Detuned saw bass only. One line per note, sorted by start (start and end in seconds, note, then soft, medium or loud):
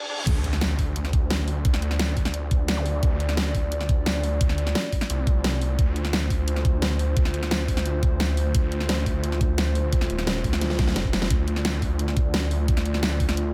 0.27 1.64 D2 loud
1.65 3.01 D2 loud
3.03 4.39 D2 loud
4.41 4.74 D2 loud
5.10 5.77 C2 loud
5.79 7.15 D2 loud
7.17 8.53 D2 loud
8.55 9.91 D2 loud
9.93 10.08 D2 loud
10.10 10.43 D#1 loud
10.44 10.95 D2 loud
10.96 11.29 F1 loud
11.30 12.67 D2 loud
12.68 13.54 D2 loud